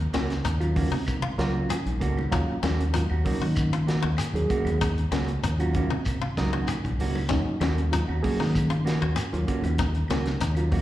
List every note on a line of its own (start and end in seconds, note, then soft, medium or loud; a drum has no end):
0.13 0.41 C#2 medium
0.13 0.32 A#3 medium
0.13 0.33 C#4 medium
0.13 0.39 C#4 medium
0.13 0.33 F#4 medium
0.13 snare medium
0.13 closed hi-hat medium
0.13 high conga medium
0.13 claves medium
0.13 shekere soft
0.30 snare soft
0.30 closed hi-hat soft
0.45 0.85 D#2 medium
0.45 0.70 D#4 medium
0.45 closed hi-hat medium
0.45 shekere medium
0.60 0.92 F#3 medium
0.60 0.92 A#3 medium
0.60 0.92 C#4 medium
0.60 0.92 F4 medium
0.60 closed hi-hat soft
0.60 claves medium
0.76 0.95 A#3 medium
0.76 0.95 C#4 medium
0.76 0.95 F#4 medium
0.76 kick medium
0.76 open hi-hat medium
0.76 high conga medium
0.76 low conga medium
0.76 shekere soft
0.92 1.18 C3 medium
0.92 1.17 D#4 medium
1.07 kick medium
1.07 closed hi-hat medium
1.07 high conga medium
1.07 claves medium
1.07 shekere medium
1.22 1.48 F4 medium
1.38 1.64 C#2 medium
1.38 1.76 F#3 loud
1.38 1.76 A#3 medium
1.38 1.54 A#3 medium
1.38 1.76 C#4 medium
1.38 1.55 C#4 medium
1.38 1.76 F4 loud
1.38 1.54 F#4 medium
1.38 snare medium
1.38 closed hi-hat soft
1.38 shekere soft
1.55 1.74 C#4 soft
1.55 1.73 F#4 medium
1.69 1.95 G#4 medium
1.69 closed hi-hat medium
1.69 claves medium
1.69 shekere medium
1.86 1.98 A#1 medium
1.86 closed hi-hat soft
1.86 high conga medium
2.00 2.32 C#2 medium
2.00 2.19 A#3 medium
2.00 2.20 C#4 medium
2.00 2.20 F#4 medium
2.00 kick medium
2.00 closed hi-hat soft
2.00 low conga medium
2.00 shekere soft
2.17 high conga medium
2.17 claves medium
2.31 2.46 D#2 medium
2.31 2.57 F#3 loud
2.31 2.57 A#3 medium
2.31 2.57 C#4 medium
2.31 2.57 D#4 medium
2.31 2.57 F4 loud
2.31 kick medium
2.31 closed hi-hat medium
2.31 low conga medium
2.31 shekere medium
2.49 muted fingered electric bass stroke soft
2.63 3.03 D#2 medium
2.63 2.82 A#3 medium
2.63 2.88 C#4 medium
2.63 2.83 C#4 medium
2.63 2.83 F#4 medium
2.63 snare medium
2.63 closed hi-hat medium
2.63 high conga medium
2.63 claves medium
2.63 shekere soft
2.80 closed hi-hat soft
2.93 3.06 F#3 medium
2.93 3.06 A#3 medium
2.93 3.07 C#4 medium
2.93 3.19 D#4 medium
2.93 3.07 F4 medium
2.93 closed hi-hat medium
2.93 shekere medium
3.10 3.23 D#2 medium
3.10 3.25 F#4 soft
3.10 claves medium
3.25 3.69 F#3 medium
3.25 3.44 A#3 medium
3.25 3.69 A#3 medium
3.25 3.69 C#4 medium
3.25 3.44 C#4 medium
3.25 3.69 D#4 medium
3.25 3.45 F#4 medium
3.25 kick medium
3.25 open hi-hat medium
3.25 high conga medium
3.25 low conga medium
3.25 shekere soft
3.42 4.06 D#3 medium
3.42 3.67 F#4 medium
3.56 kick medium
3.56 closed hi-hat medium
3.56 claves medium
3.56 shekere medium
3.73 3.98 F4 medium
3.73 closed hi-hat soft
3.87 4.06 A#3 medium
3.87 4.07 F#4 medium
3.87 muted clean electric guitar stroke medium
3.87 snare medium
3.87 closed hi-hat soft
3.87 shekere soft
4.02 4.16 D#2 medium
4.02 4.15 F#4 medium
4.17 4.44 G#4 medium
4.17 closed hi-hat medium
4.17 claves medium
4.17 shekere medium
4.33 4.46 D#2 medium
4.33 4.84 F#3 medium
4.33 4.84 A#3 medium
4.33 4.84 C#4 medium
4.33 4.84 G#4 medium
4.33 closed hi-hat soft
4.33 high conga medium
4.50 4.69 A#3 medium
4.50 4.69 C#4 medium
4.50 4.69 F#4 medium
4.50 kick medium
4.50 closed hi-hat medium
4.50 low conga medium
4.50 shekere soft
4.65 5.04 D#2 medium
4.65 closed hi-hat soft
4.65 high conga medium
4.65 claves medium
4.81 5.06 D#4 medium
4.81 kick medium
4.81 closed hi-hat medium
4.81 shekere medium
4.98 closed hi-hat soft
5.11 5.38 C#2 medium
5.11 5.31 A#3 medium
5.11 5.37 C#4 medium
5.11 5.31 C#4 medium
5.11 5.31 F#4 medium
5.11 snare medium
5.11 closed hi-hat medium
5.11 high conga loud
5.11 claves medium
5.11 shekere soft
5.28 closed hi-hat soft
5.43 5.83 D#2 medium
5.43 5.69 D#4 medium
5.43 closed hi-hat medium
5.43 shekere medium
5.59 5.90 F#3 medium
5.59 5.90 A#3 medium
5.59 5.90 C#4 medium
5.59 5.74 C#4 soft
5.59 5.91 F4 medium
5.59 5.75 F#4 medium
5.59 closed hi-hat soft
5.59 claves medium
5.74 5.94 A#3 medium
5.74 5.94 C#4 medium
5.74 5.94 F#4 medium
5.74 kick medium
5.74 closed hi-hat soft
5.74 high conga medium
5.74 low conga medium
5.74 shekere soft
5.90 6.17 C3 medium
5.90 6.16 D#4 medium
6.05 kick medium
6.05 closed hi-hat medium
6.05 claves medium
6.05 shekere medium
6.21 6.47 F4 medium
6.37 6.63 C#2 medium
6.37 6.74 F#3 medium
6.37 6.75 A#3 medium
6.37 6.53 C#4 medium
6.37 6.75 C#4 medium
6.37 6.75 D#4 loud
6.37 6.52 F#4 medium
6.37 muted clean electric guitar stroke medium
6.37 kick medium
6.37 snare medium
6.37 closed hi-hat soft
6.37 shekere soft
6.53 6.72 C#4 soft
6.53 6.71 F#4 soft
6.53 6.65 F#4 medium
6.67 6.93 G#4 medium
6.67 closed hi-hat medium
6.67 claves medium
6.67 shekere medium
6.84 6.97 A#1 medium
6.84 kick medium
6.84 closed hi-hat soft
6.84 high conga medium
6.99 7.31 C#2 medium
6.99 7.18 A#3 medium
6.99 7.19 C#4 medium
6.99 7.19 F#4 medium
6.99 open hi-hat medium
6.99 high conga medium
6.99 low conga medium
6.99 shekere soft
7.15 high conga medium
7.15 claves medium
7.29 7.44 D#2 medium
7.29 7.55 F#3 medium
7.29 7.55 A#3 medium
7.29 7.55 C#4 medium
7.29 7.55 D#4 loud
7.29 kick medium
7.29 snare soft
7.29 closed hi-hat medium
7.29 shekere medium
7.45 muted fingered electric bass stroke soft
7.60 8.00 D#2 medium
7.60 7.80 A#3 medium
7.60 7.80 C#4 medium
7.60 7.87 C#4 medium
7.60 7.80 F#4 medium
7.60 snare medium
7.60 closed hi-hat soft
7.60 high conga medium
7.60 claves medium
7.60 shekere soft
7.78 closed hi-hat soft
7.91 8.04 F#3 medium
7.91 8.04 A#3 medium
7.91 8.05 C#4 medium
7.91 8.18 D#4 medium
7.91 8.05 F4 medium
7.91 closed hi-hat medium
7.91 shekere medium
8.08 8.21 D#2 medium
8.08 8.22 C#4 soft
8.08 8.23 F#4 soft
8.08 claves medium
8.23 8.67 F#3 medium
8.23 8.42 A#3 medium
8.23 8.67 A#3 medium
8.23 8.42 C#4 medium
8.23 8.67 C#4 medium
8.23 8.43 F#4 medium
8.23 8.67 G#4 medium
8.23 kick medium
8.23 open hi-hat medium
8.23 high conga medium
8.23 low conga medium
8.23 shekere soft
8.40 9.04 D#3 medium
8.40 8.65 D#4 medium
8.40 snare soft
8.55 kick medium
8.55 closed hi-hat medium
8.55 high conga medium
8.55 claves medium
8.55 shekere medium
8.70 8.95 F4 medium
8.70 closed hi-hat soft
8.85 9.01 A#3 medium
8.85 9.01 C#4 medium
8.85 9.00 F#4 medium
8.85 snare medium
8.85 closed hi-hat medium
8.85 shekere soft
9.02 9.15 D#2 medium
9.02 9.20 C#4 soft
9.02 9.20 F#4 soft
9.02 9.14 F#4 medium
9.16 9.41 G#4 medium
9.16 closed hi-hat medium
9.16 claves medium
9.16 shekere medium
9.33 9.46 D#2 medium
9.33 9.83 F#3 medium
9.33 9.82 A#3 medium
9.33 9.82 C#4 medium
9.33 9.82 F4 medium
9.33 closed hi-hat soft
9.33 high conga medium
9.47 9.66 A#3 medium
9.47 9.67 C#4 medium
9.47 9.67 F#4 medium
9.47 kick medium
9.47 closed hi-hat medium
9.47 high conga medium
9.47 low conga medium
9.47 shekere soft
9.64 10.03 D#2 medium
9.64 closed hi-hat soft
9.64 high conga medium
9.64 claves medium
9.78 10.04 D#4 medium
9.78 kick medium
9.78 closed hi-hat medium
9.78 low conga medium
9.78 shekere medium
9.95 closed hi-hat soft
10.08 10.36 C#2 medium
10.08 10.29 A#3 medium
10.08 10.29 C#4 medium
10.08 10.36 C#4 medium
10.08 10.29 F#4 medium
10.08 snare medium
10.08 closed hi-hat medium
10.08 high conga loud
10.08 claves medium
10.08 shekere soft
10.26 snare soft
10.26 closed hi-hat soft
10.26 high conga medium
10.40 10.81 D#2 medium
10.40 10.66 D#4 medium
10.40 closed hi-hat medium
10.40 shekere medium
10.55 10.82 F#3 medium
10.55 10.82 A#3 medium
10.55 10.82 C#4 medium
10.55 10.82 F4 medium
10.55 closed hi-hat soft
10.55 claves medium
10.71 10.82 A#3 medium
10.71 10.82 C#4 medium
10.71 10.82 F#4 medium
10.71 kick medium
10.71 open hi-hat medium
10.71 high conga medium
10.71 low conga medium
10.71 shekere soft